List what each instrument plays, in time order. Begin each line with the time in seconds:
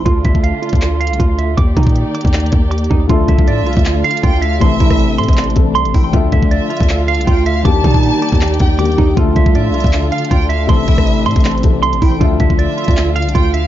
Already playing: string section A3 D4
0.05 808-style bass D2, string section D3 F4, clean electric guitar F4, kick, closed hi-hat
0.25 808-style bass D2, clean electric guitar E5, kick, closed hi-hat
0.35 kick
0.43 clean electric guitar F5, closed hi-hat
0.62 clean electric guitar F4, closed hi-hat
0.69 808-style bass D2, kick, closed hi-hat
0.75 closed hi-hat
0.82 clap, closed hi-hat
1.00 clean electric guitar F5, closed hi-hat
1.07 808-style bass C2, closed hi-hat
1.13 closed hi-hat
1.19 808-style bass D2, clean electric guitar F4, kick, closed hi-hat
1.38 clean electric guitar E5, closed hi-hat
1.57 808-style bass D#2, string section D#3 A#3 G4 D5, clean electric guitar D6, kick, closed hi-hat
1.77 808-style bass A#2, clean electric guitar D#4, kick, closed hi-hat
1.83 kick, closed hi-hat
1.89 closed hi-hat
1.96 closed hi-hat
2.15 clean electric guitar D6, closed hi-hat
2.21 808-style bass D#2, kick, closed hi-hat
2.27 closed hi-hat
2.34 clap, closed hi-hat
2.40 closed hi-hat
2.46 closed hi-hat
2.52 808-style bass D#2, kick, closed hi-hat
2.71 clean electric guitar D6, closed hi-hat
2.78 closed hi-hat
2.84 closed hi-hat
2.90 808-style bass D#2, clean electric guitar D#4, kick
3.08 808-style bass D2, grand piano D3 F3 A3 A4 E5, string section D3 A3 D4 F4, clean electric guitar F4, kick, closed hi-hat
3.28 808-style bass C2, clean electric guitar E5, kick, closed hi-hat
3.39 kick
3.47 808-style bass A2, clean electric guitar D5, violin section E5, closed hi-hat
3.62 808-style bass C2
3.66 clean electric guitar F4, closed hi-hat
3.73 808-style bass D2, kick, closed hi-hat
3.79 closed hi-hat
3.85 clap, closed hi-hat
4.04 violin section F5, clean electric guitar F5, closed hi-hat
4.11 closed hi-hat
4.17 closed hi-hat
4.23 808-style bass D2, clean electric guitar F4, violin section G5, kick, closed hi-hat
4.42 clean electric guitar E5, violin section F5, closed hi-hat
4.59 808-style bass A1, grand piano C3 E3 A3 E4 A4, string section A3 C4, violin section E5, clean electric guitar C6, kick, closed hi-hat
4.80 808-style bass A1, clean electric guitar E4, kick, closed hi-hat
4.90 kick, cross-stick
4.99 closed hi-hat
5.18 808-style bass A2, clean electric guitar C6, closed hi-hat
5.23 closed hi-hat
5.28 808-style bass A1, kick, closed hi-hat
5.33 closed hi-hat
5.37 clap, closed hi-hat
5.44 closed hi-hat
5.50 closed hi-hat
5.55 808-style bass A1, grand piano C3 E3 A3 E4 A4, kick, closed hi-hat
5.75 808-style bass C2, clean electric guitar C6, closed hi-hat
5.85 808-style bass A1, closed hi-hat
5.94 808-style bass A1, clean electric guitar E4, violin section G5, kick, open hi-hat
6.11 808-style bass D2, grand piano D3 F3 A3 A4 E5, string section D3 A3 F4, clean electric guitar F4, kick, closed hi-hat
6.32 808-style bass D2, clean electric guitar E5, kick, closed hi-hat
6.42 kick
6.51 clean electric guitar D5, violin section E5, closed hi-hat
6.70 clean electric guitar F4, closed hi-hat
6.77 808-style bass D2, kick, closed hi-hat
6.83 closed hi-hat
6.89 clap, closed hi-hat
7.08 clean electric guitar F5, violin section F5, closed hi-hat
7.15 808-style bass C2, closed hi-hat
7.21 closed hi-hat
7.27 808-style bass D2, clean electric guitar F4, violin section G5, kick, closed hi-hat
7.46 clean electric guitar E5, violin section F5, closed hi-hat
7.63 808-style bass D#2, grand piano D#3 G3 A#3 D4 G4, string section D#3 A#3 G4 D5, violin section A5, clean electric guitar D6, kick, closed hi-hat
7.84 808-style bass A#2, clean electric guitar D#4, kick, closed hi-hat
7.91 kick, closed hi-hat
7.97 closed hi-hat
8.03 closed hi-hat
8.22 clean electric guitar D6, closed hi-hat
8.29 808-style bass D#2, kick, closed hi-hat
8.35 closed hi-hat
8.41 clap, closed hi-hat
8.48 closed hi-hat
8.54 closed hi-hat
8.60 808-style bass D#2, violin section G5, kick, closed hi-hat
8.78 grand piano D#3 G3 A#3 D4 G4, clean electric guitar D6, closed hi-hat
8.85 closed hi-hat
8.92 closed hi-hat
8.98 808-style bass D#2, clean electric guitar D#4, kick
9.15 808-style bass D2, grand piano D3 F3 A3 A4 E5, string section D3 A3 D4 F4, clean electric guitar F4, kick, closed hi-hat
9.36 808-style bass C2, clean electric guitar E5, kick, closed hi-hat
9.46 kick
9.55 808-style bass A2, clean electric guitar D5, violin section E5, closed hi-hat
9.70 808-style bass C2
9.74 clean electric guitar F4, closed hi-hat
9.80 808-style bass D2, kick, closed hi-hat
9.87 closed hi-hat
9.93 clap, closed hi-hat
10.11 violin section F5, clean electric guitar F5, closed hi-hat
10.18 closed hi-hat
10.25 closed hi-hat
10.31 808-style bass D2, clean electric guitar F4, violin section G5, kick, closed hi-hat
10.49 clean electric guitar E5, violin section F5, closed hi-hat
10.67 808-style bass A1, grand piano C3 E3 A3 E4 A4, string section C4, violin section E5, clean electric guitar C6, kick, closed hi-hat
10.88 808-style bass A1, clean electric guitar E4, kick, closed hi-hat
10.98 kick, cross-stick
11.07 closed hi-hat
11.26 808-style bass A2, clean electric guitar C6, closed hi-hat
11.31 closed hi-hat
11.36 808-style bass A1, kick, closed hi-hat
11.40 closed hi-hat
11.45 clap, closed hi-hat
11.51 closed hi-hat
11.58 closed hi-hat
11.63 808-style bass A1, grand piano C3 E3 A3 E4 A4, kick, closed hi-hat
11.83 808-style bass C2, clean electric guitar C6, closed hi-hat
11.93 808-style bass A1, closed hi-hat
12.02 808-style bass A1, clean electric guitar E4, violin section G5, kick, open hi-hat
12.19 808-style bass D2, grand piano D3 F3 A3 A4 E5, string section D3 F4, clean electric guitar F4, kick, closed hi-hat
12.40 808-style bass D2, clean electric guitar E5, kick, closed hi-hat
12.50 kick
12.59 clean electric guitar D5, violin section E5, closed hi-hat
12.77 clean electric guitar F4, closed hi-hat
12.84 808-style bass D2, kick, closed hi-hat
12.91 closed hi-hat
12.97 clap, closed hi-hat
13.16 clean electric guitar F5, violin section F5, closed hi-hat
13.22 808-style bass C2, closed hi-hat
13.29 closed hi-hat
13.35 808-style bass D2, clean electric guitar F4, violin section G5, kick, closed hi-hat
13.54 clean electric guitar E5, violin section F5, closed hi-hat